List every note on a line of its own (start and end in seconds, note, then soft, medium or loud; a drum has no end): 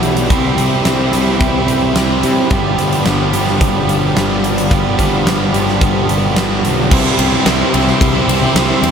0.00 0.31 B1 medium
0.00 0.28 E2 medium
0.00 0.30 E2 medium
0.00 0.28 B2 medium
0.00 0.29 B2 medium
0.00 0.29 E3 medium
0.00 0.30 E3 medium
0.00 0.31 G3 medium
0.00 0.32 B3 loud
0.00 0.28 E4 medium
0.00 6.87 G4 medium
0.00 0.28 D5 medium
0.00 0.26 E5 medium
0.00 6.87 B5 medium
0.00 closed hi-hat medium
0.17 closed hi-hat medium
0.28 0.57 C2 medium
0.28 0.82 C3 medium
0.28 1.11 C3 medium
0.28 1.12 E3 medium
0.28 0.59 G3 medium
0.28 1.14 G3 medium
0.28 0.55 C4 medium
0.28 2.48 C5 medium
0.28 2.48 E5 medium
0.28 kick loud
0.28 closed hi-hat medium
0.32 1.12 C4 medium
0.32 1.12 E4 medium
0.56 0.85 C2 medium
0.56 0.85 G3 medium
0.56 0.86 C4 medium
0.56 closed hi-hat medium
0.84 1.12 C2 medium
0.84 1.40 C3 medium
0.84 1.16 G3 medium
0.84 1.11 C4 medium
0.84 snare loud
0.84 closed hi-hat medium
1.12 1.39 C2 medium
1.12 2.50 C3 medium
1.12 2.50 E3 medium
1.12 2.51 G3 medium
1.12 1.70 G3 medium
1.12 1.65 C4 medium
1.12 2.50 C4 medium
1.12 2.49 E4 loud
1.12 closed hi-hat medium
1.40 1.67 C2 medium
1.40 kick loud
1.40 closed hi-hat medium
1.67 1.95 C2 medium
1.67 1.95 G3 medium
1.67 1.96 C4 medium
1.67 closed hi-hat medium
1.94 2.22 C2 medium
1.94 2.48 C3 medium
1.94 2.53 G3 medium
1.94 2.50 C4 medium
1.94 snare loud
1.94 closed hi-hat medium
2.23 2.50 C3 medium
2.23 closed hi-hat medium
2.49 2.77 G1 medium
2.49 3.04 G2 medium
2.49 3.36 G2 loud
2.49 3.32 D3 medium
2.49 2.80 D3 medium
2.49 3.34 F3 medium
2.49 3.34 G3 loud
2.49 2.76 G3 medium
2.49 3.33 B3 medium
2.49 6.87 D5 medium
2.49 6.87 F5 medium
2.49 kick loud
2.49 closed hi-hat medium
2.53 3.32 G4 loud
2.77 3.04 G1 medium
2.77 3.05 D3 medium
2.77 3.07 G3 medium
2.77 closed hi-hat medium
2.93 closed hi-hat medium
3.04 3.32 G1 medium
3.04 4.14 G2 medium
3.04 3.34 D3 medium
3.04 3.32 G3 medium
3.04 snare loud
3.04 closed hi-hat medium
3.32 3.60 G1 loud
3.32 3.90 D3 medium
3.32 4.70 D3 medium
3.32 4.70 F3 medium
3.32 3.87 G3 medium
3.32 4.72 G3 medium
3.32 4.69 B3 medium
3.32 4.74 G4 medium
3.32 closed hi-hat medium
3.36 4.70 G2 medium
3.47 snare soft
3.61 4.13 G1 medium
3.61 kick loud
3.61 closed hi-hat medium
3.87 4.16 D3 medium
3.87 4.18 G3 medium
3.87 closed hi-hat medium
4.15 4.68 G1 medium
4.15 4.69 G2 medium
4.15 4.70 D3 medium
4.15 4.72 G3 medium
4.15 snare loud
4.15 closed hi-hat medium
4.44 closed hi-hat medium
4.58 closed hi-hat medium
4.70 4.97 G1 medium
4.70 5.25 G2 medium
4.70 5.52 G2 medium
4.70 5.52 D3 medium
4.70 5.00 D3 medium
4.70 5.52 F3 medium
4.70 5.53 G3 loud
4.70 4.96 G3 loud
4.70 5.53 B3 loud
4.70 kick loud
4.70 closed hi-hat medium
4.74 5.51 G4 loud
4.98 5.25 G1 medium
4.98 5.26 D3 medium
4.98 5.28 G3 medium
4.98 kick medium
4.98 closed hi-hat medium
5.26 5.52 G1 medium
5.26 5.81 G2 medium
5.26 5.55 D3 medium
5.26 5.52 G3 medium
5.26 snare loud
5.26 closed hi-hat medium
5.52 5.80 G1 medium
5.52 6.90 G2 medium
5.52 6.90 D3 medium
5.52 6.11 D3 medium
5.52 6.90 F3 medium
5.52 6.07 G3 medium
5.52 6.89 G3 medium
5.52 6.89 B3 medium
5.52 6.89 G4 medium
5.52 closed hi-hat medium
5.68 snare soft
5.81 6.07 G1 medium
5.81 kick loud
5.81 closed hi-hat medium
6.08 6.35 G1 medium
6.08 6.36 D3 medium
6.08 6.37 G3 medium
6.08 closed hi-hat medium
6.36 6.62 G1 medium
6.36 6.89 G2 medium
6.36 6.89 D3 medium
6.36 6.91 G3 medium
6.36 snare loud
6.36 closed hi-hat medium
6.65 6.92 B1 medium
6.65 closed hi-hat medium
6.90 7.08 C2 loud
6.90 7.45 C3 medium
6.90 7.45 C3 loud
6.90 7.17 E3 medium
6.90 7.35 G3 medium
6.90 7.18 G3 loud
6.90 7.20 C4 loud
6.90 7.31 C4 loud
6.90 7.20 E4 loud
6.90 8.91 G4 medium
6.90 8.91 C5 medium
6.90 8.91 E5 medium
6.90 8.91 C6 medium
6.90 kick loud
6.90 crash loud
7.18 7.35 C2 medium
7.18 7.46 E3 medium
7.18 7.34 G3 medium
7.18 7.33 C4 medium
7.18 7.31 E4 medium
7.18 ride medium
7.32 7.46 G3 medium
7.32 7.47 G3 medium
7.32 7.48 C4 medium
7.32 7.47 C4 medium
7.32 7.48 E4 medium
7.45 7.63 C2 loud
7.45 7.72 C3 medium
7.45 8.53 C3 medium
7.45 7.72 E3 loud
7.45 7.73 G3 loud
7.45 7.74 G3 medium
7.45 7.74 C4 loud
7.45 7.76 C4 medium
7.45 7.75 E4 loud
7.45 snare loud
7.45 ride loud
7.72 7.90 C2 loud
7.72 8.14 C3 medium
7.72 8.26 E3 medium
7.72 7.88 G3 medium
7.72 7.87 G3 medium
7.72 7.87 C4 medium
7.72 7.86 C4 medium
7.72 7.86 E4 medium
7.72 ride medium
7.87 8.15 G3 medium
7.87 8.14 C4 medium
7.87 8.13 E4 medium
7.87 muted distorted electric guitar stroke soft
7.87 snare soft
8.01 8.18 C2 loud
8.01 kick loud
8.01 ride loud
8.14 8.27 G3 medium
8.14 8.28 G3 medium
8.14 8.30 C4 medium
8.14 8.28 C4 medium
8.14 8.29 E4 medium
8.27 8.44 C2 medium
8.27 8.54 C3 medium
8.27 8.55 E3 medium
8.27 8.43 G3 medium
8.27 8.41 G3 medium
8.27 8.41 C4 medium
8.27 8.41 E4 medium
8.27 ride medium
8.31 8.41 C4 medium
8.41 8.54 G3 medium
8.41 8.55 C4 medium
8.41 8.57 E4 medium
8.41 muted distorted electric guitar stroke medium
8.54 8.72 C2 medium
8.54 8.91 C3 loud
8.54 8.91 E3 loud
8.54 8.70 G3 loud
8.54 8.91 G3 loud
8.54 8.69 C4 loud
8.54 8.68 E4 loud
8.54 snare loud
8.54 ride loud
8.59 8.91 C4 loud
8.68 8.91 G3 medium
8.68 8.91 C4 medium
8.68 8.91 E4 medium
8.83 8.91 E2 loud
8.83 ride medium